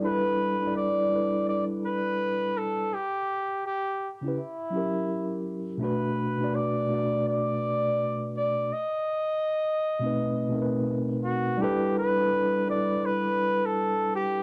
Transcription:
X:1
M:4/4
L:1/16
Q:"Swing 16ths" 1/4=83
K:G
V:1 name="Flugelhorn"
B4 d4 d2 B4 A2 | G4 G3 z E6 z2 | B4 d4 d6 d2 | ^d12 z2 F2 |
G2 B4 d2 B3 A3 G2 |]
V:2 name="Tine electric piano"
[G,DEAB]2 z [G,DEAd]2 z [G,DEAB]6 z4 | z6 z [^C,^CEGB] z2 [F,CEG^A]4- [F,CEGA] z | [B,,A,DFB]2 z [B,,A,DFd]2 z [B,,A,DFd]6 z4 | z6 z [B,,A,C^DB]2 z [B,,A,CD_B=B]4- [B,,A,CD_B=B] z |
[G,DEAB]2 z [G,DEAB]2 z [G,DEAB]6 z4 |]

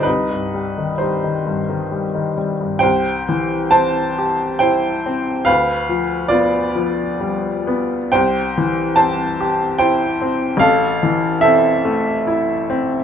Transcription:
X:1
M:3/4
L:1/16
Q:1/4=70
K:Cm
V:1 name="Upright piano"
[E=B]4 [Ec]6 z2 | [K:C] [cg]4 [ca]4 [cg]4 | [Bf]4 [Fd]8 | [cg]4 [ca]4 [cg]4 |
[Af]4 [Ae]8 |]
V:2 name="Upright piano" clef=bass
C,, G,, G, E, G, E, G,, E, G, E, G, G,, | [K:C] C,,2 E,2 C2 G2 E2 C2 | D,,2 F,2 B,2 F,2 G,2 B,2 | C,,2 E,2 C2 G2 E2 C2 |
A,,,2 E,2 C2 A,2 E2 C2 |]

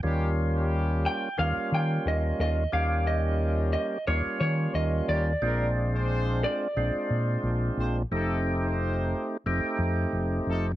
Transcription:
X:1
M:4/4
L:1/16
Q:"Swing 16ths" 1/4=89
K:Eb
V:1 name="Clean electric guitar"
z6 g2 f2 g2 e2 e2 | f2 e4 e2 _d2 d2 e2 =d2- | d6 d8- d2- | d6 z8 z2 |]
V:2 name="Horn section"
[G,_DEG]2 z [G,DEG]4 z6 z [F,DEF] z | [F,_DEF]2 z [F,DEF]4 z6 z [G,DEG] z | [B,DAB]2 z [CDAc]4 z6 z [CDAc] z | [=A,EF=A]2 z [CEFc]4 z6 z [A,EFA] z |]
V:3 name="Tonewheel organ"
[G,B,_DF]8 [G,B,DF]8 | [G,B,_DG]8 [G,B,DF]8 | [A,CDF]8 [A,CDF]8 | [=A,CEG]8 [A,CEG]8 |]
V:4 name="Fingered electric bass" clef=bass
E,,8 E,, z E,2 E,,2 E,,2 | E,,8 E,, z E,2 E,,2 E,,2 | B,,,8 B,,, z B,,2 B,,,2 B,,,2 | F,,,8 F,,, z F,,2 F,,,2 F,,,2 |]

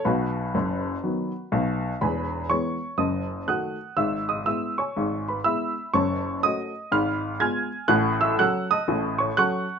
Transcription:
X:1
M:4/4
L:1/8
Q:"Swing" 1/4=122
K:E
V:1 name="Upright piano"
[FB]6 z2 | [Bgb]2 [cc']2 [dad']2 [fd'f']2 | [ee'] [dd'] [ee'] [cgc']2 [Bb] [ebe']2 | [cac']2 [dd']2 [=f_c'=f']2 [_af'_a']2 |
[ff'] [ee'] [ff'] [dad']2 [cc'] [fc'f']2 |]
V:2 name="Upright piano" clef=bass
[B,,,B,,]2 [F,,,F,,]2 [D,F,B,]2 [B,,,B,,]2 | [E,,,E,,]2 [E,G,B,]2 [F,,,F,,]2 [D,A,F]2 | [G,,,G,,]2 [G,B,E]2 [G,,,G,,]2 [G,B,E]2 | [F,,,F,,]2 [A,CF]2 [_A,,,_A,,]2 [_A,_C=F]2 |
[A,,,A,,]2 [F,CA]2 [A,,,A,,]2 [F,CA]2 |]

